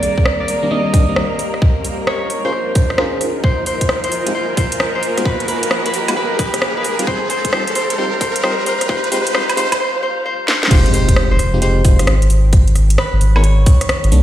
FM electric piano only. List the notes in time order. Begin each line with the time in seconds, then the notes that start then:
Already playing: D#3 G3 A#3 C4 D4
0.63 D#3 G3 A#3 C4 D4
0.71 D#3 G3 A#3 C4 D4
0.93 D#3 G3 A#3 C4 D4
1.08 D#3 G3 A#3 C4 D4
2.45 C#4 F4 G#4 A#4 C5
2.98 C#4 F4 G#4 A#4 C5
4.27 G#3 C4 D#4 F4 G4
5.17 G#3 B3 D#4 F4 F#4
6.08 G#3 B3 D#4 F4 F#4
6.99 G3 C4 D#4 F4 G4
7.07 D#4 F4 G4
7.53 G3 C4 D#4 F4 G4
7.98 G3 C4 D#4 F4 G4
8.44 G3 C4 D#4 F4 G4
8.89 G#3 C4 D#4 F4 G4
9.12 G#3 C4 D#4 F4 G4
9.34 G#3 C4 D#4 F4 G4
9.57 G#3 C4 D#4 F4 G4
10.71 G#3 C4 D#4 F4 G4
11.54 G#3 C4 D#4 F4 G4
11.62 G#3 C4 D#4 F4 G4
11.85 G#3 C4 D#4 F4 G4
11.99 G#3 C4 D#4 F4 G4
13.36 B3 D#4 F#4 G#4 A#4
14.12 D#3 G3 A#3 C4 D4